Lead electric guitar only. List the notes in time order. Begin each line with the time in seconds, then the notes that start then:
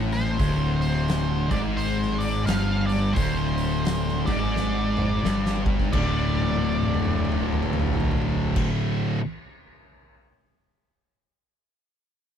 0.13 C5
0.81 C5
1.51 D5
1.77 C5
2.19 D5
2.46 F5
2.86 D5
3.13 C5
4.26 D5
5.93 D5